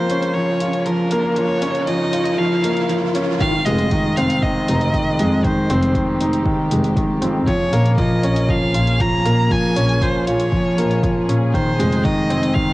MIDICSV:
0, 0, Header, 1, 7, 480
1, 0, Start_track
1, 0, Key_signature, -4, "minor"
1, 0, Tempo, 508475
1, 1296, Time_signature, 4, 2, 24, 8
1, 12021, End_track
2, 0, Start_track
2, 0, Title_t, "Violin"
2, 0, Program_c, 0, 40
2, 0, Note_on_c, 0, 72, 101
2, 319, Note_on_c, 0, 73, 96
2, 333, Note_off_c, 0, 72, 0
2, 803, Note_on_c, 0, 70, 95
2, 817, Note_off_c, 0, 73, 0
2, 1282, Note_on_c, 0, 73, 99
2, 1296, Note_off_c, 0, 70, 0
2, 1762, Note_off_c, 0, 73, 0
2, 1768, Note_on_c, 0, 75, 97
2, 2248, Note_on_c, 0, 77, 88
2, 2262, Note_off_c, 0, 75, 0
2, 2732, Note_off_c, 0, 77, 0
2, 3215, Note_on_c, 0, 77, 118
2, 3447, Note_on_c, 0, 75, 105
2, 3461, Note_off_c, 0, 77, 0
2, 3931, Note_on_c, 0, 77, 103
2, 3945, Note_off_c, 0, 75, 0
2, 4173, Note_on_c, 0, 75, 99
2, 4187, Note_off_c, 0, 77, 0
2, 5143, Note_on_c, 0, 72, 85
2, 5157, Note_off_c, 0, 75, 0
2, 5619, Note_off_c, 0, 72, 0
2, 7054, Note_on_c, 0, 73, 103
2, 7501, Note_off_c, 0, 73, 0
2, 7536, Note_on_c, 0, 75, 93
2, 8026, Note_on_c, 0, 77, 102
2, 8040, Note_off_c, 0, 75, 0
2, 8503, Note_on_c, 0, 82, 117
2, 8517, Note_off_c, 0, 77, 0
2, 8980, Note_on_c, 0, 80, 114
2, 8994, Note_off_c, 0, 82, 0
2, 9460, Note_on_c, 0, 72, 100
2, 9474, Note_off_c, 0, 80, 0
2, 9691, Note_on_c, 0, 73, 93
2, 9705, Note_off_c, 0, 72, 0
2, 10653, Note_off_c, 0, 73, 0
2, 10886, Note_on_c, 0, 72, 99
2, 11368, Note_on_c, 0, 75, 99
2, 11382, Note_off_c, 0, 72, 0
2, 11845, Note_on_c, 0, 77, 98
2, 11859, Note_off_c, 0, 75, 0
2, 12021, Note_off_c, 0, 77, 0
2, 12021, End_track
3, 0, Start_track
3, 0, Title_t, "String section"
3, 0, Program_c, 1, 48
3, 0, Note_on_c, 1, 49, 75
3, 0, Note_on_c, 1, 56, 56
3, 0, Note_on_c, 1, 58, 61
3, 0, Note_on_c, 1, 65, 74
3, 1255, Note_off_c, 1, 58, 0
3, 1296, Note_on_c, 1, 73, 69
3, 3177, Note_off_c, 1, 49, 0
3, 3177, Note_off_c, 1, 65, 0
3, 3178, Note_off_c, 1, 56, 0
3, 3197, Note_off_c, 1, 73, 0
3, 3224, Note_on_c, 1, 56, 65
3, 3226, Note_on_c, 1, 51, 76
3, 3226, Note_on_c, 1, 60, 67
3, 3228, Note_on_c, 1, 65, 79
3, 5123, Note_off_c, 1, 65, 0
3, 5145, Note_on_c, 1, 67, 80
3, 7022, Note_off_c, 1, 56, 0
3, 7023, Note_off_c, 1, 51, 0
3, 7023, Note_off_c, 1, 60, 0
3, 7041, Note_off_c, 1, 67, 0
3, 7059, Note_on_c, 1, 68, 81
3, 7060, Note_on_c, 1, 53, 74
3, 7060, Note_on_c, 1, 61, 75
3, 7061, Note_on_c, 1, 58, 69
3, 10860, Note_off_c, 1, 61, 0
3, 10861, Note_off_c, 1, 58, 0
3, 10896, Note_on_c, 1, 60, 66
3, 10899, Note_on_c, 1, 63, 64
3, 12021, Note_off_c, 1, 53, 0
3, 12021, Note_off_c, 1, 60, 0
3, 12021, Note_off_c, 1, 63, 0
3, 12021, Note_off_c, 1, 68, 0
3, 12021, End_track
4, 0, Start_track
4, 0, Title_t, "Felt piano"
4, 0, Program_c, 2, 0
4, 0, Control_c, 2, 64, 127
4, 0, Note_on_c, 2, 53, 95
4, 0, Note_on_c, 2, 58, 107
4, 99, Note_on_c, 2, 61, 95
4, 234, Note_off_c, 2, 61, 0
4, 339, Note_off_c, 2, 53, 0
4, 339, Note_on_c, 2, 53, 73
4, 565, Note_off_c, 2, 53, 0
4, 574, Note_on_c, 2, 65, 75
4, 803, Note_off_c, 2, 65, 0
4, 815, Note_on_c, 2, 53, 77
4, 952, Note_off_c, 2, 53, 0
4, 1057, Note_off_c, 2, 58, 0
4, 1057, Note_on_c, 2, 58, 95
4, 1284, Note_off_c, 2, 58, 0
4, 1296, Note_on_c, 2, 53, 73
4, 1524, Note_off_c, 2, 53, 0
4, 1532, Note_on_c, 2, 61, 110
4, 1762, Note_off_c, 2, 61, 0
4, 1770, Note_on_c, 2, 53, 78
4, 2001, Note_off_c, 2, 53, 0
4, 2013, Note_on_c, 2, 65, 77
4, 2242, Note_off_c, 2, 65, 0
4, 2247, Note_on_c, 2, 53, 82
4, 2479, Note_off_c, 2, 53, 0
4, 2489, Note_on_c, 2, 58, 74
4, 2720, Note_off_c, 2, 58, 0
4, 2731, Note_on_c, 2, 53, 75
4, 2870, Note_off_c, 2, 53, 0
4, 2973, Note_on_c, 2, 61, 84
4, 3202, Note_off_c, 2, 61, 0
4, 3219, Note_on_c, 2, 51, 96
4, 3227, Control_c, 2, 64, 0
4, 3354, Note_off_c, 2, 51, 0
4, 3419, Control_c, 2, 64, 127
4, 3458, Note_on_c, 2, 56, 108
4, 3685, Note_off_c, 2, 56, 0
4, 3701, Note_on_c, 2, 51, 99
4, 3926, Note_off_c, 2, 51, 0
4, 3940, Note_on_c, 2, 60, 106
4, 4075, Note_off_c, 2, 60, 0
4, 4179, Note_on_c, 2, 51, 77
4, 4405, Note_off_c, 2, 51, 0
4, 4422, Note_on_c, 2, 63, 74
4, 4647, Note_off_c, 2, 63, 0
4, 4661, Note_on_c, 2, 51, 71
4, 4795, Note_off_c, 2, 51, 0
4, 4901, Note_on_c, 2, 56, 103
4, 5126, Note_off_c, 2, 56, 0
4, 5141, Note_on_c, 2, 51, 77
4, 5366, Note_off_c, 2, 51, 0
4, 5382, Note_on_c, 2, 60, 110
4, 5607, Note_off_c, 2, 60, 0
4, 5624, Note_on_c, 2, 51, 72
4, 5848, Note_off_c, 2, 51, 0
4, 5863, Note_on_c, 2, 63, 79
4, 6087, Note_off_c, 2, 63, 0
4, 6101, Note_on_c, 2, 51, 83
4, 6326, Note_off_c, 2, 51, 0
4, 6341, Note_on_c, 2, 56, 72
4, 6566, Note_off_c, 2, 56, 0
4, 6577, Note_on_c, 2, 51, 80
4, 6713, Note_off_c, 2, 51, 0
4, 6812, Note_on_c, 2, 60, 74
4, 7042, Note_off_c, 2, 60, 0
4, 7054, Note_on_c, 2, 53, 92
4, 7068, Control_c, 2, 64, 0
4, 7192, Note_off_c, 2, 53, 0
4, 7220, Control_c, 2, 64, 127
4, 7294, Note_on_c, 2, 58, 104
4, 7523, Note_off_c, 2, 58, 0
4, 7536, Note_on_c, 2, 53, 107
4, 7764, Note_off_c, 2, 53, 0
4, 7771, Note_on_c, 2, 61, 98
4, 7910, Note_off_c, 2, 61, 0
4, 8017, Note_on_c, 2, 53, 83
4, 8244, Note_off_c, 2, 53, 0
4, 8252, Note_on_c, 2, 65, 74
4, 8482, Note_off_c, 2, 65, 0
4, 8492, Note_on_c, 2, 53, 76
4, 8630, Note_off_c, 2, 53, 0
4, 8730, Note_on_c, 2, 58, 105
4, 8961, Note_off_c, 2, 58, 0
4, 8974, Note_on_c, 2, 53, 83
4, 9203, Note_off_c, 2, 53, 0
4, 9212, Note_on_c, 2, 61, 110
4, 9442, Note_off_c, 2, 61, 0
4, 9452, Note_on_c, 2, 53, 79
4, 9682, Note_off_c, 2, 53, 0
4, 9695, Note_on_c, 2, 65, 76
4, 9923, Note_off_c, 2, 65, 0
4, 9930, Note_on_c, 2, 53, 79
4, 10161, Note_off_c, 2, 53, 0
4, 10176, Note_on_c, 2, 58, 74
4, 10404, Note_off_c, 2, 58, 0
4, 10414, Note_on_c, 2, 53, 77
4, 10552, Note_off_c, 2, 53, 0
4, 10653, Note_on_c, 2, 61, 73
4, 10882, Note_off_c, 2, 61, 0
4, 10894, Note_on_c, 2, 51, 93
4, 10907, Control_c, 2, 64, 0
4, 11031, Note_off_c, 2, 51, 0
4, 11097, Control_c, 2, 64, 127
4, 11132, Note_on_c, 2, 56, 102
4, 11362, Note_off_c, 2, 56, 0
4, 11370, Note_on_c, 2, 51, 102
4, 11601, Note_off_c, 2, 51, 0
4, 11611, Note_on_c, 2, 60, 99
4, 11750, Note_off_c, 2, 60, 0
4, 11850, Note_on_c, 2, 51, 80
4, 12021, Note_off_c, 2, 51, 0
4, 12021, End_track
5, 0, Start_track
5, 0, Title_t, "Double bass section"
5, 0, Program_c, 3, 48
5, 92, Note_on_c, 3, 34, 75
5, 265, Note_off_c, 3, 34, 0
5, 572, Note_on_c, 3, 34, 96
5, 745, Note_off_c, 3, 34, 0
5, 1051, Note_on_c, 3, 32, 92
5, 1224, Note_off_c, 3, 32, 0
5, 1531, Note_on_c, 3, 34, 95
5, 1704, Note_off_c, 3, 34, 0
5, 2011, Note_on_c, 3, 34, 74
5, 2184, Note_off_c, 3, 34, 0
5, 2493, Note_on_c, 3, 34, 101
5, 2665, Note_off_c, 3, 34, 0
5, 2971, Note_on_c, 3, 32, 96
5, 3144, Note_off_c, 3, 32, 0
5, 3454, Note_on_c, 3, 29, 100
5, 3626, Note_off_c, 3, 29, 0
5, 3933, Note_on_c, 3, 29, 73
5, 4105, Note_off_c, 3, 29, 0
5, 4417, Note_on_c, 3, 29, 100
5, 4587, Note_off_c, 3, 29, 0
5, 4900, Note_on_c, 3, 41, 104
5, 5069, Note_off_c, 3, 41, 0
5, 5380, Note_on_c, 3, 29, 97
5, 5549, Note_off_c, 3, 29, 0
5, 5856, Note_on_c, 3, 29, 78
5, 6027, Note_off_c, 3, 29, 0
5, 6334, Note_on_c, 3, 29, 104
5, 6506, Note_off_c, 3, 29, 0
5, 6812, Note_on_c, 3, 41, 105
5, 6985, Note_off_c, 3, 41, 0
5, 7295, Note_on_c, 3, 34, 107
5, 7466, Note_off_c, 3, 34, 0
5, 7775, Note_on_c, 3, 34, 81
5, 7946, Note_off_c, 3, 34, 0
5, 8251, Note_on_c, 3, 34, 98
5, 8424, Note_off_c, 3, 34, 0
5, 8733, Note_on_c, 3, 46, 106
5, 8905, Note_off_c, 3, 46, 0
5, 9214, Note_on_c, 3, 34, 99
5, 9386, Note_off_c, 3, 34, 0
5, 9693, Note_on_c, 3, 34, 70
5, 9865, Note_off_c, 3, 34, 0
5, 10175, Note_on_c, 3, 34, 101
5, 10346, Note_off_c, 3, 34, 0
5, 10654, Note_on_c, 3, 46, 97
5, 10826, Note_off_c, 3, 46, 0
5, 11132, Note_on_c, 3, 29, 97
5, 11305, Note_off_c, 3, 29, 0
5, 11614, Note_on_c, 3, 29, 75
5, 11785, Note_off_c, 3, 29, 0
5, 12021, End_track
6, 0, Start_track
6, 0, Title_t, "Riser"
6, 0, Program_c, 4, 103
6, 0, Note_on_c, 4, 60, 67
6, 3213, Note_off_c, 4, 60, 0
6, 12021, End_track
7, 0, Start_track
7, 0, Title_t, "Drums"
7, 91, Note_on_c, 9, 42, 59
7, 185, Note_off_c, 9, 42, 0
7, 212, Note_on_c, 9, 42, 39
7, 307, Note_off_c, 9, 42, 0
7, 571, Note_on_c, 9, 42, 64
7, 665, Note_off_c, 9, 42, 0
7, 693, Note_on_c, 9, 42, 29
7, 787, Note_off_c, 9, 42, 0
7, 811, Note_on_c, 9, 42, 45
7, 905, Note_off_c, 9, 42, 0
7, 1048, Note_on_c, 9, 42, 65
7, 1143, Note_off_c, 9, 42, 0
7, 1289, Note_on_c, 9, 42, 41
7, 1383, Note_off_c, 9, 42, 0
7, 1529, Note_on_c, 9, 42, 60
7, 1624, Note_off_c, 9, 42, 0
7, 1651, Note_on_c, 9, 42, 30
7, 1746, Note_off_c, 9, 42, 0
7, 1769, Note_on_c, 9, 42, 45
7, 1863, Note_off_c, 9, 42, 0
7, 2010, Note_on_c, 9, 42, 63
7, 2105, Note_off_c, 9, 42, 0
7, 2128, Note_on_c, 9, 42, 44
7, 2222, Note_off_c, 9, 42, 0
7, 2490, Note_on_c, 9, 42, 69
7, 2584, Note_off_c, 9, 42, 0
7, 2611, Note_on_c, 9, 42, 29
7, 2706, Note_off_c, 9, 42, 0
7, 2731, Note_on_c, 9, 42, 44
7, 2825, Note_off_c, 9, 42, 0
7, 2972, Note_on_c, 9, 42, 68
7, 3067, Note_off_c, 9, 42, 0
7, 3215, Note_on_c, 9, 42, 36
7, 3216, Note_on_c, 9, 36, 100
7, 3309, Note_off_c, 9, 42, 0
7, 3310, Note_off_c, 9, 36, 0
7, 3455, Note_on_c, 9, 42, 59
7, 3549, Note_off_c, 9, 42, 0
7, 3573, Note_on_c, 9, 42, 30
7, 3668, Note_off_c, 9, 42, 0
7, 3694, Note_on_c, 9, 42, 39
7, 3696, Note_on_c, 9, 36, 101
7, 3789, Note_off_c, 9, 42, 0
7, 3791, Note_off_c, 9, 36, 0
7, 3938, Note_on_c, 9, 42, 59
7, 4032, Note_off_c, 9, 42, 0
7, 4058, Note_on_c, 9, 42, 42
7, 4152, Note_off_c, 9, 42, 0
7, 4178, Note_on_c, 9, 36, 107
7, 4272, Note_off_c, 9, 36, 0
7, 4419, Note_on_c, 9, 42, 69
7, 4513, Note_off_c, 9, 42, 0
7, 4540, Note_on_c, 9, 42, 28
7, 4634, Note_off_c, 9, 42, 0
7, 4658, Note_on_c, 9, 36, 106
7, 4661, Note_on_c, 9, 42, 44
7, 4753, Note_off_c, 9, 36, 0
7, 4756, Note_off_c, 9, 42, 0
7, 4900, Note_on_c, 9, 42, 62
7, 4994, Note_off_c, 9, 42, 0
7, 5139, Note_on_c, 9, 36, 98
7, 5140, Note_on_c, 9, 42, 41
7, 5233, Note_off_c, 9, 36, 0
7, 5235, Note_off_c, 9, 42, 0
7, 5381, Note_on_c, 9, 42, 60
7, 5475, Note_off_c, 9, 42, 0
7, 5501, Note_on_c, 9, 42, 33
7, 5596, Note_off_c, 9, 42, 0
7, 5618, Note_on_c, 9, 36, 104
7, 5620, Note_on_c, 9, 42, 40
7, 5712, Note_off_c, 9, 36, 0
7, 5714, Note_off_c, 9, 42, 0
7, 5860, Note_on_c, 9, 42, 62
7, 5954, Note_off_c, 9, 42, 0
7, 5978, Note_on_c, 9, 42, 43
7, 6073, Note_off_c, 9, 42, 0
7, 6096, Note_on_c, 9, 36, 112
7, 6190, Note_off_c, 9, 36, 0
7, 6337, Note_on_c, 9, 42, 71
7, 6431, Note_off_c, 9, 42, 0
7, 6458, Note_on_c, 9, 42, 29
7, 6552, Note_off_c, 9, 42, 0
7, 6575, Note_on_c, 9, 36, 104
7, 6578, Note_on_c, 9, 42, 45
7, 6670, Note_off_c, 9, 36, 0
7, 6672, Note_off_c, 9, 42, 0
7, 6815, Note_on_c, 9, 42, 62
7, 6909, Note_off_c, 9, 42, 0
7, 7054, Note_on_c, 9, 36, 107
7, 7057, Note_on_c, 9, 42, 41
7, 7149, Note_off_c, 9, 36, 0
7, 7151, Note_off_c, 9, 42, 0
7, 7296, Note_on_c, 9, 42, 63
7, 7390, Note_off_c, 9, 42, 0
7, 7417, Note_on_c, 9, 42, 30
7, 7511, Note_off_c, 9, 42, 0
7, 7533, Note_on_c, 9, 36, 110
7, 7535, Note_on_c, 9, 42, 44
7, 7627, Note_off_c, 9, 36, 0
7, 7630, Note_off_c, 9, 42, 0
7, 7774, Note_on_c, 9, 42, 66
7, 7868, Note_off_c, 9, 42, 0
7, 7894, Note_on_c, 9, 42, 44
7, 7988, Note_off_c, 9, 42, 0
7, 8013, Note_on_c, 9, 36, 112
7, 8107, Note_off_c, 9, 36, 0
7, 8252, Note_on_c, 9, 42, 67
7, 8347, Note_off_c, 9, 42, 0
7, 8374, Note_on_c, 9, 42, 30
7, 8469, Note_off_c, 9, 42, 0
7, 8493, Note_on_c, 9, 36, 115
7, 8496, Note_on_c, 9, 42, 44
7, 8588, Note_off_c, 9, 36, 0
7, 8590, Note_off_c, 9, 42, 0
7, 8734, Note_on_c, 9, 42, 68
7, 8829, Note_off_c, 9, 42, 0
7, 8973, Note_on_c, 9, 36, 112
7, 8976, Note_on_c, 9, 42, 40
7, 9067, Note_off_c, 9, 36, 0
7, 9071, Note_off_c, 9, 42, 0
7, 9215, Note_on_c, 9, 42, 64
7, 9309, Note_off_c, 9, 42, 0
7, 9335, Note_on_c, 9, 42, 30
7, 9429, Note_off_c, 9, 42, 0
7, 9453, Note_on_c, 9, 36, 109
7, 9457, Note_on_c, 9, 42, 44
7, 9548, Note_off_c, 9, 36, 0
7, 9551, Note_off_c, 9, 42, 0
7, 9698, Note_on_c, 9, 42, 59
7, 9792, Note_off_c, 9, 42, 0
7, 9815, Note_on_c, 9, 42, 42
7, 9910, Note_off_c, 9, 42, 0
7, 9934, Note_on_c, 9, 36, 107
7, 10028, Note_off_c, 9, 36, 0
7, 10179, Note_on_c, 9, 42, 69
7, 10274, Note_off_c, 9, 42, 0
7, 10298, Note_on_c, 9, 42, 27
7, 10392, Note_off_c, 9, 42, 0
7, 10415, Note_on_c, 9, 36, 110
7, 10419, Note_on_c, 9, 42, 44
7, 10510, Note_off_c, 9, 36, 0
7, 10514, Note_off_c, 9, 42, 0
7, 10659, Note_on_c, 9, 42, 63
7, 10753, Note_off_c, 9, 42, 0
7, 10895, Note_on_c, 9, 36, 106
7, 10901, Note_on_c, 9, 42, 38
7, 10990, Note_off_c, 9, 36, 0
7, 10995, Note_off_c, 9, 42, 0
7, 11136, Note_on_c, 9, 42, 60
7, 11231, Note_off_c, 9, 42, 0
7, 11256, Note_on_c, 9, 42, 29
7, 11351, Note_off_c, 9, 42, 0
7, 11375, Note_on_c, 9, 42, 39
7, 11376, Note_on_c, 9, 36, 109
7, 11469, Note_off_c, 9, 42, 0
7, 11470, Note_off_c, 9, 36, 0
7, 11615, Note_on_c, 9, 42, 62
7, 11710, Note_off_c, 9, 42, 0
7, 11735, Note_on_c, 9, 42, 42
7, 11830, Note_off_c, 9, 42, 0
7, 11855, Note_on_c, 9, 36, 108
7, 11949, Note_off_c, 9, 36, 0
7, 12021, End_track
0, 0, End_of_file